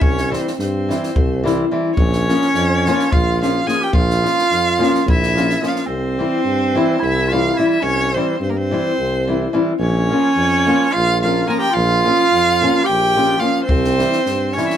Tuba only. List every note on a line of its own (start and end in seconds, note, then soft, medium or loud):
0.01 0.36 C2 loud
0.59 0.93 G2 medium
1.16 1.65 C2 loud
1.97 2.32 A#1 loud
2.54 2.89 F2 loud
3.12 3.61 A#1 loud
3.92 4.27 A#1 loud
4.51 4.85 F2 medium
5.06 5.55 A#1 loud
5.87 6.22 C2 medium
6.44 6.79 G2 medium
7.02 7.51 C2 loud
7.83 8.17 C2 loud
8.40 8.75 G2 medium
8.98 9.46 C2 loud
9.79 10.13 A#1 loud
10.36 10.70 F2 medium
10.95 11.43 A#1 loud
11.75 12.09 A#1 loud
12.31 12.65 F2 medium
12.89 13.37 A#1 medium
13.70 14.04 C2 loud
14.26 14.60 G2 medium